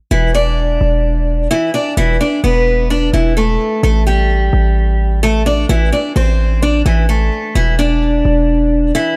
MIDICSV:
0, 0, Header, 1, 3, 480
1, 0, Start_track
1, 0, Key_signature, 0, "minor"
1, 0, Tempo, 465116
1, 115, Time_signature, 4, 2, 24, 8
1, 9460, End_track
2, 0, Start_track
2, 0, Title_t, "Steel-string acoustic guitar"
2, 0, Program_c, 0, 25
2, 114, Note_on_c, 0, 64, 81
2, 122, Note_on_c, 0, 52, 65
2, 307, Note_off_c, 0, 64, 0
2, 312, Note_off_c, 0, 52, 0
2, 356, Note_on_c, 0, 62, 80
2, 364, Note_on_c, 0, 74, 68
2, 1514, Note_off_c, 0, 62, 0
2, 1518, Note_off_c, 0, 74, 0
2, 1555, Note_on_c, 0, 64, 87
2, 1563, Note_on_c, 0, 52, 72
2, 1747, Note_off_c, 0, 64, 0
2, 1753, Note_off_c, 0, 52, 0
2, 1795, Note_on_c, 0, 62, 89
2, 1803, Note_on_c, 0, 74, 67
2, 1988, Note_off_c, 0, 62, 0
2, 1992, Note_off_c, 0, 74, 0
2, 2035, Note_on_c, 0, 64, 107
2, 2044, Note_on_c, 0, 52, 78
2, 2228, Note_off_c, 0, 64, 0
2, 2233, Note_off_c, 0, 52, 0
2, 2276, Note_on_c, 0, 62, 82
2, 2285, Note_on_c, 0, 74, 65
2, 2469, Note_off_c, 0, 62, 0
2, 2474, Note_off_c, 0, 74, 0
2, 2515, Note_on_c, 0, 59, 89
2, 2523, Note_on_c, 0, 71, 66
2, 2966, Note_off_c, 0, 59, 0
2, 2971, Note_off_c, 0, 71, 0
2, 2996, Note_on_c, 0, 62, 86
2, 3004, Note_on_c, 0, 74, 69
2, 3188, Note_off_c, 0, 62, 0
2, 3193, Note_off_c, 0, 74, 0
2, 3235, Note_on_c, 0, 64, 76
2, 3243, Note_on_c, 0, 52, 61
2, 3428, Note_off_c, 0, 64, 0
2, 3432, Note_off_c, 0, 52, 0
2, 3475, Note_on_c, 0, 69, 87
2, 3482, Note_on_c, 0, 57, 67
2, 3926, Note_off_c, 0, 69, 0
2, 3930, Note_off_c, 0, 57, 0
2, 3957, Note_on_c, 0, 69, 84
2, 3965, Note_on_c, 0, 57, 67
2, 4149, Note_off_c, 0, 69, 0
2, 4153, Note_off_c, 0, 57, 0
2, 4196, Note_on_c, 0, 67, 81
2, 4204, Note_on_c, 0, 55, 65
2, 5354, Note_off_c, 0, 67, 0
2, 5358, Note_off_c, 0, 55, 0
2, 5397, Note_on_c, 0, 69, 93
2, 5405, Note_on_c, 0, 57, 71
2, 5589, Note_off_c, 0, 69, 0
2, 5594, Note_off_c, 0, 57, 0
2, 5635, Note_on_c, 0, 62, 82
2, 5644, Note_on_c, 0, 74, 67
2, 5828, Note_off_c, 0, 62, 0
2, 5833, Note_off_c, 0, 74, 0
2, 5875, Note_on_c, 0, 64, 112
2, 5884, Note_on_c, 0, 52, 77
2, 6068, Note_off_c, 0, 64, 0
2, 6073, Note_off_c, 0, 52, 0
2, 6114, Note_on_c, 0, 62, 74
2, 6123, Note_on_c, 0, 74, 59
2, 6307, Note_off_c, 0, 62, 0
2, 6312, Note_off_c, 0, 74, 0
2, 6355, Note_on_c, 0, 60, 80
2, 6364, Note_on_c, 0, 72, 72
2, 6806, Note_off_c, 0, 60, 0
2, 6811, Note_off_c, 0, 72, 0
2, 6837, Note_on_c, 0, 62, 90
2, 6845, Note_on_c, 0, 74, 70
2, 7029, Note_off_c, 0, 62, 0
2, 7033, Note_off_c, 0, 74, 0
2, 7075, Note_on_c, 0, 64, 81
2, 7083, Note_on_c, 0, 52, 63
2, 7268, Note_off_c, 0, 64, 0
2, 7273, Note_off_c, 0, 52, 0
2, 7315, Note_on_c, 0, 69, 82
2, 7323, Note_on_c, 0, 57, 60
2, 7766, Note_off_c, 0, 69, 0
2, 7770, Note_off_c, 0, 57, 0
2, 7796, Note_on_c, 0, 64, 85
2, 7804, Note_on_c, 0, 52, 66
2, 7988, Note_off_c, 0, 64, 0
2, 7993, Note_off_c, 0, 52, 0
2, 8036, Note_on_c, 0, 62, 83
2, 8044, Note_on_c, 0, 74, 70
2, 9194, Note_off_c, 0, 62, 0
2, 9198, Note_off_c, 0, 74, 0
2, 9234, Note_on_c, 0, 64, 86
2, 9241, Note_on_c, 0, 52, 71
2, 9427, Note_off_c, 0, 64, 0
2, 9432, Note_off_c, 0, 52, 0
2, 9460, End_track
3, 0, Start_track
3, 0, Title_t, "808-style bass"
3, 0, Program_c, 1, 38
3, 115, Note_on_c, 1, 28, 112
3, 806, Note_off_c, 1, 28, 0
3, 834, Note_on_c, 1, 28, 107
3, 1526, Note_off_c, 1, 28, 0
3, 2034, Note_on_c, 1, 28, 113
3, 2265, Note_off_c, 1, 28, 0
3, 2515, Note_on_c, 1, 28, 106
3, 3206, Note_off_c, 1, 28, 0
3, 3235, Note_on_c, 1, 28, 104
3, 3695, Note_off_c, 1, 28, 0
3, 3955, Note_on_c, 1, 33, 113
3, 4646, Note_off_c, 1, 33, 0
3, 4674, Note_on_c, 1, 33, 105
3, 5833, Note_off_c, 1, 33, 0
3, 5875, Note_on_c, 1, 33, 114
3, 6105, Note_off_c, 1, 33, 0
3, 6355, Note_on_c, 1, 33, 110
3, 7046, Note_off_c, 1, 33, 0
3, 7075, Note_on_c, 1, 33, 104
3, 7536, Note_off_c, 1, 33, 0
3, 7795, Note_on_c, 1, 28, 113
3, 8486, Note_off_c, 1, 28, 0
3, 8515, Note_on_c, 1, 28, 108
3, 9206, Note_off_c, 1, 28, 0
3, 9460, End_track
0, 0, End_of_file